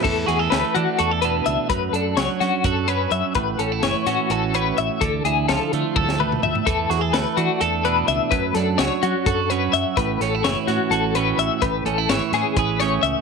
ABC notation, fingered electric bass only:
X:1
M:7/8
L:1/16
Q:1/4=127
K:A
V:1 name="Fingered electric bass" clef=bass
E,,2 E,,2 D,, z E, z E,,4 C,, z | F,,2 F,,2 C,, z F, z F,,4 F,, z | A,,,2 A,,,2 F,,, z A,, z A,,,4 A,,, z | D,,2 D,,2 C,, z D, z D,,4 D,, z |
E,,2 E,,2 D,, z E, z E,,4 C,, z | F,,2 F,,2 C,, z F, z F,,4 F,, z | A,,,2 A,,,2 F,,, z A,, z A,,,4 A,,, z | A,,,2 A,,,2 G,,, z A,, z A,,,4 C,, z |]